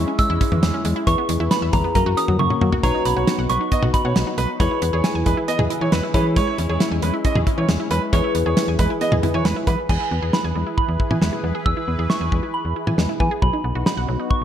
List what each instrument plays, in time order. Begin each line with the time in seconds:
Already playing: analog synth pad G#3 C#4 E4, tine electric piano E4 G#4 C#5, synth bell C#6
0.08 synth arpeggio sound C#4
0.19 synth arpeggio sound G#3, synth bell E6, kick, closed hi-hat
0.30 fm bass E2, synth arpeggio sound E4
0.41 synth arpeggio sound C#4, kick, closed hi-hat
0.52 fm bass E3, mid tom
0.63 fm bass E2, synth arpeggio sound E3, snare, closed hi-hat
0.74 synth arpeggio sound C#4
0.85 fm bass E2, synth arpeggio sound G#3, closed hi-hat
0.96 synth arpeggio sound E4
1.07 fm bass E2, analog synth pad E3 G#4 B4, synth arpeggio sound E3, tine electric piano E4 G#4 B4, synth bell C#6, kick, closed hi-hat
1.18 synth arpeggio sound B3
1.29 fm bass E2, synth arpeggio sound G#3, closed hi-hat
1.40 fm bass E2, synth arpeggio sound E4
1.51 synth arpeggio sound B3, synth bell B5, snare, closed hi-hat
1.62 fm bass E2, synth arpeggio sound E5
1.73 fm bass E2, synth arpeggio sound E3, synth bell A#5, kick, closed hi-hat, mid tom
1.84 synth arpeggio sound B3
1.95 fm bass F#2, synth arpeggio sound A#3, analog synth pad A#3 C#4 F#4, tine electric piano C#4 F#4 A#4, synth bell A#5, kick, closed hi-hat
2.06 fm bass F#2, synth arpeggio sound F#4
2.17 synth arpeggio sound C#4, synth bell D#6, closed hi-hat
2.28 fm bass F#3, mid tom
2.39 fm bass F#2, synth arpeggio sound F#3, synth bell C#6, high tom
2.50 synth arpeggio sound C#4, mid tom
2.61 fm bass F#3, synth arpeggio sound A#3, mid tom
2.72 synth arpeggio sound F#4, floor tom
2.83 fm bass B1, synth arpeggio sound F#3, analog synth pad B3 D#4 F#4, tine electric piano D#4 F#4 B4, grand piano C#5, synth bell A#5, kick, closed hi-hat
2.94 synth arpeggio sound D#4
3.05 fm bass B1, synth arpeggio sound B3, synth bell B5, closed hi-hat
3.17 fm bass B1, synth arpeggio sound F#4, grand piano C#5
3.27 synth arpeggio sound D#4, snare, closed hi-hat
3.39 fm bass B1, synth arpeggio sound F#5
3.49 fm bass B1, synth arpeggio sound F#3, grand piano B4, synth bell C#6, closed hi-hat
3.61 synth arpeggio sound D#4
3.72 synth arpeggio sound B3, grand piano D#5, kick, closed hi-hat
3.83 fm bass B1, synth arpeggio sound F#4, mid tom
3.94 synth arpeggio sound D#4, synth bell B5, kick, closed hi-hat
4.05 fm bass B2, grand piano C#5, synth arpeggio sound F#5
4.16 fm bass B1, synth arpeggio sound F#3, snare, closed hi-hat
4.27 synth arpeggio sound D#4
4.38 fm bass B1, synth arpeggio sound B3, grand piano B4, closed hi-hat
4.60 fm bass E2, analog synth pad E3 E4 G#4 B4, synth arpeggio sound G#3, tine electric piano E4 G#4 B4, grand piano C#5, synth bell B5, kick, closed hi-hat
4.71 synth arpeggio sound E4
4.82 fm bass E2, synth arpeggio sound B3, closed hi-hat
4.93 fm bass E2, synth arpeggio sound G#4, grand piano C#5
5.04 synth arpeggio sound E4, synth bell G#5, snare, closed hi-hat
5.15 fm bass E2, synth arpeggio sound G#5
5.26 fm bass E2, synth arpeggio sound G#3, grand piano B4, kick, closed hi-hat
5.37 synth arpeggio sound E4
5.48 synth arpeggio sound B3, grand piano D#5, closed hi-hat
5.59 fm bass E2, synth arpeggio sound G#4, mid tom
5.70 synth arpeggio sound E4, closed hi-hat
5.81 fm bass E3, grand piano C#5, synth arpeggio sound G#5
5.92 fm bass E2, synth arpeggio sound G#3, grand piano B4, snare, closed hi-hat
6.03 synth arpeggio sound E4
6.14 fm bass E3, analog synth pad G#3 C#4, synth arpeggio sound C#4, tine electric piano E4 G#4 C#5, grand piano B4, kick, closed hi-hat
6.36 synth arpeggio sound G#3, grand piano C#5, kick, closed hi-hat
6.47 synth arpeggio sound E4
6.58 fm bass E2, synth arpeggio sound C#4, closed hi-hat
6.69 fm bass E2, synth arpeggio sound G#4, grand piano C#5
6.80 synth arpeggio sound E4, snare, closed hi-hat
6.92 fm bass E2, synth arpeggio sound G#5
7.02 fm bass E2, synth arpeggio sound G#3, grand piano B4, closed hi-hat
7.14 synth arpeggio sound E4
7.25 synth arpeggio sound C#4, grand piano D#5, kick, closed hi-hat
7.35 fm bass E2, synth arpeggio sound G#4, mid tom
7.47 synth arpeggio sound E4, kick, closed hi-hat
7.58 fm bass E3, grand piano C#5, synth arpeggio sound G#5
7.69 fm bass E2, synth arpeggio sound G#3, snare, closed hi-hat
7.80 synth arpeggio sound E4
7.91 fm bass E2, synth arpeggio sound C#4, grand piano B4, closed hi-hat
8.13 fm bass E2, analog synth pad E3 G#4 B4, synth arpeggio sound G#3, tine electric piano E4 G#4 B4, grand piano C#5, kick, closed hi-hat
8.24 synth arpeggio sound E4
8.35 fm bass E2, synth arpeggio sound B3, closed hi-hat
8.46 fm bass E2, synth arpeggio sound G#4, grand piano C#5
8.57 synth arpeggio sound E4, snare, closed hi-hat
8.68 fm bass E2, synth arpeggio sound G#5
8.79 fm bass E2, synth arpeggio sound G#3, grand piano B4, kick, closed hi-hat
8.90 synth arpeggio sound E4
9.01 synth arpeggio sound B3, grand piano D#5, closed hi-hat
9.12 fm bass E2, synth arpeggio sound G#4, mid tom
9.23 synth arpeggio sound E4, closed hi-hat, mid tom
9.34 fm bass E3, grand piano C#5, synth arpeggio sound G#5
9.45 fm bass E2, synth arpeggio sound G#3, grand piano B4, snare, closed hi-hat
9.56 synth arpeggio sound E4
9.67 fm bass E3, synth arpeggio sound B3, grand piano B4, kick, closed hi-hat
9.89 fm bass E2, analog synth pad E3 E4 G#4 B4, synth arpeggio sound G#3, synth bell G#5, kick, crash
10.00 synth arpeggio sound E4
10.11 fm bass E2, synth arpeggio sound B3
10.22 fm bass E2, synth arpeggio sound G#4
10.33 synth arpeggio sound E4, synth bell B5, snare
10.44 fm bass E2, synth arpeggio sound G#5
10.55 fm bass E2, synth arpeggio sound G#3
10.67 synth arpeggio sound E4
10.77 synth bell B5, kick
10.88 fm bass E2
11.00 synth arpeggio sound E4, kick
11.11 fm bass E3, synth arpeggio sound G#5, mid tom
11.22 fm bass E2, synth arpeggio sound G#3, snare
11.33 synth arpeggio sound E4
11.44 fm bass E2, synth arpeggio sound B3
11.55 synth arpeggio sound G#4
11.66 fm bass E2, synth arpeggio sound G#3, synth bell E6, kick
11.77 synth arpeggio sound E4
11.88 fm bass E2, synth arpeggio sound B3
11.99 fm bass E2, synth arpeggio sound G#4
12.10 synth arpeggio sound E4, synth bell C#6, snare
12.21 fm bass E2, synth arpeggio sound G#5
12.32 fm bass E2, synth arpeggio sound G#3, kick
12.43 synth arpeggio sound E4
12.54 synth bell B5
12.65 fm bass E2
12.76 synth arpeggio sound E4
12.87 fm bass E3, synth arpeggio sound G#5, mid tom
12.98 fm bass E2, synth arpeggio sound G#3, snare
13.09 synth arpeggio sound E4
13.20 fm bass E3, synth arpeggio sound B3, synth bell G#5, kick
13.31 synth arpeggio sound G#4
13.42 fm bass B1, synth arpeggio sound F#3, analog synth pad B3 D#4 F#4, synth bell B5, kick
13.53 synth arpeggio sound D#4
13.64 fm bass B1, synth arpeggio sound B3
13.75 fm bass B1, synth arpeggio sound F#4
13.86 synth arpeggio sound D#4, synth bell B5, snare
13.97 fm bass B1, synth arpeggio sound F#5
14.08 fm bass B1, synth arpeggio sound F#3
14.19 synth arpeggio sound D#4
14.30 synth bell C#6, kick